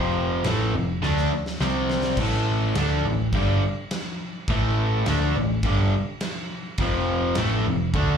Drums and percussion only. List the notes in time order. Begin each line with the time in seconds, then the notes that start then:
0.44 snare, crash
1.03 snare
1.17 snare
1.46 snare
1.60 snare
1.90 snare
2.03 snare
2.17 kick, crash
2.75 snare, crash
3.33 kick, crash
3.91 snare, crash
4.48 kick, crash
5.06 snare, crash
5.63 kick, crash
6.20 snare, crash
6.78 kick, crash
7.35 snare, crash
7.94 kick, crash